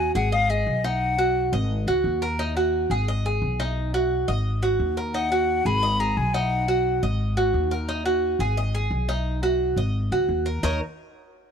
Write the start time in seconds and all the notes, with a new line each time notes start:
Already playing: F#4 G#5
0.15 G#1 G#4 F#5
0.32 D#5 F5
0.50 G#4 D#5
0.67 B1
0.84 D#4 F#5
1.18 F#4
1.52 G#1 D#5
1.87 C#2 F#4
2.04 D#2
2.22 A#4
2.39 D#4
2.57 F#4
2.90 G#1 G#4
3.08 D#5
3.26 G#4
3.42 B1
3.60 D#4
3.94 F#4
4.28 G#1 D#5
4.63 F#4
4.79 D#2
4.97 A#4
5.14 D#4 F#5
5.32 F#4
5.65 G#1 G#4 B5
5.83 D#5
6.00 G#4 A#5
6.17 B1 G#5
6.34 D#4 F#5
6.68 F#4
7.03 G#1 D#5
7.37 F#4
7.54 D#2
7.71 A#4
7.89 D#4
8.05 F#4
8.39 G#1 G#4
8.57 D#5
8.75 G#4
8.91 B1
9.09 D#4
9.43 F#4
9.76 G#1 D#5
10.12 C#2 F#4
10.29 D#2
10.46 A#4
10.63 D#2 D#4 A#4 C#5